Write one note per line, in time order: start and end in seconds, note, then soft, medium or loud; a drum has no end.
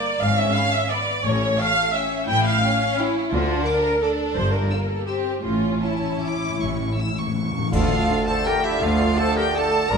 0.00 0.21 A#3 medium
0.00 0.21 D5 loud
0.21 0.50 G#1 medium
0.21 0.50 G#2 medium
0.21 0.91 C#4 medium
0.21 0.38 F5 loud
0.38 0.56 E5 loud
0.55 0.73 F5 loud
0.55 0.64 B5 medium
0.73 0.91 E5 loud
0.90 1.24 B3 medium
0.90 1.24 D5 loud
0.90 0.99 B5 medium
1.24 1.52 A1 medium
1.24 1.72 A2 medium
1.24 1.52 A2 medium
1.24 1.57 C#4 medium
1.24 1.58 C#5 loud
1.58 1.93 A3 medium
1.58 1.94 F5 loud
1.58 1.66 G5 medium
1.94 2.27 C#4 medium
1.94 2.28 E5 loud
1.94 2.02 G5 medium
2.28 2.57 A1 medium
2.28 2.57 A2 loud
2.28 2.63 E4 medium
2.28 2.44 G5 loud
2.45 2.98 F5 loud
2.63 3.31 C#4 loud
2.63 2.71 G5 medium
2.98 3.32 E4 loud
2.98 3.06 G5 medium
3.32 3.60 D2 medium
3.32 3.80 D3 medium
3.32 3.60 D3 loud
3.32 4.00 D4 medium
3.32 3.66 F4 medium
3.66 4.01 A#4 loud
3.66 3.74 D6 medium
4.02 4.69 D4 medium
4.02 4.35 A4 medium
4.02 4.10 D6 medium
4.35 4.64 G1 medium
4.35 4.64 G2 medium
4.35 4.51 C5 loud
4.52 4.89 A#4 medium
4.70 5.07 A#3 medium
4.70 4.78 E6 medium
4.88 5.07 A4 medium
5.07 5.43 C4 medium
5.07 5.43 G4 medium
5.07 5.15 E6 medium
5.44 5.76 A1 medium
5.44 5.50 A2 soft
5.44 5.76 A2 medium
5.44 7.51 C#4 medium
5.44 5.82 F4 medium
5.51 5.58 A2 soft
5.68 5.74 A2 soft
5.82 5.91 A2 soft
5.82 7.36 E4 medium
5.82 6.20 A5 medium
5.92 6.00 A2 soft
6.01 6.08 A2 soft
6.10 6.16 A2 soft
6.18 6.25 A2 soft
6.22 6.60 D6 medium
6.26 6.33 A2 medium
6.34 6.41 A2 medium
6.42 6.48 A2 medium
6.50 6.56 A2 medium
6.57 6.90 A1 medium
6.57 6.63 A2 medium
6.57 6.90 A2 medium
6.57 6.97 C#6 medium
6.64 6.71 A2 medium
6.72 6.78 A2 medium
6.79 6.85 A2 medium
6.86 6.94 A2 medium
6.95 7.02 A2 medium
6.95 7.16 E6 medium
7.03 7.10 A2 medium
7.11 7.18 A2 medium
7.16 7.26 A2 medium
7.16 7.73 C#6 medium
7.27 7.34 A2 medium
7.35 7.42 A2 medium
7.43 7.50 A2 medium
7.51 7.57 A2 medium
7.58 7.66 A2 loud
7.72 8.03 D2 medium
7.72 9.86 D3 medium
7.72 9.86 F3 medium
7.72 9.86 A3 medium
7.72 9.85 D4 medium
7.72 8.24 F4 medium
7.72 9.85 A4 medium
7.72 8.29 A4 medium
7.72 9.86 D5 medium
7.72 8.24 F5 loud
7.72 concert bass drum medium
7.72 crash medium
8.09 8.17 A3 medium
8.09 8.17 D4 medium
8.27 8.46 A4 medium
8.27 8.48 C5 medium
8.27 8.46 A5 loud
8.46 8.54 A3 medium
8.46 8.54 D4 medium
8.46 8.64 G4 medium
8.46 8.64 A#4 medium
8.46 8.64 G5 loud
8.64 8.81 E4 medium
8.64 8.82 E4 medium
8.64 8.84 G4 medium
8.64 8.82 E5 loud
8.81 9.11 D2 medium
8.81 9.17 F4 medium
8.81 9.18 F4 medium
8.81 9.17 A4 medium
8.81 9.18 F5 loud
9.17 9.26 A3 medium
9.17 9.26 D4 medium
9.17 9.36 A4 loud
9.17 9.37 A4 medium
9.17 9.38 C5 loud
9.17 9.37 A5 loud
9.36 9.55 G4 medium
9.36 9.44 G4 medium
9.36 9.57 A#4 medium
9.36 9.55 G5 loud
9.55 9.64 A3 medium
9.55 9.64 D4 medium
9.55 9.89 A4 medium
9.55 9.90 A4 medium
9.55 9.90 D5 medium
9.55 9.91 A5 loud
9.89 9.97 G1 medium
9.89 9.97 G2 medium
9.89 9.97 F3 medium
9.89 9.97 A#3 medium
9.89 9.97 D4 medium
9.89 9.97 G4 medium
9.89 9.97 A#4 loud
9.89 9.97 A#4 medium
9.89 9.97 D5 medium
9.89 9.97 D5 loud
9.89 9.97 A#5 loud